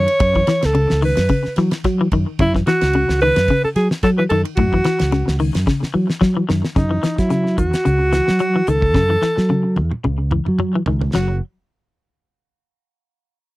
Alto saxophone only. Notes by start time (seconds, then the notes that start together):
Already playing: C#5
0.65 A4
1.05 B4
2.41 E4
2.67 F#4
3.22 B4
3.64 A4
3.76 G#4
4.03 A4
4.18 B4
4.29 A4
4.56 F#4
6.77 D#4
7.19 E4
7.58 F#4
8.69 A4
11.14 F#4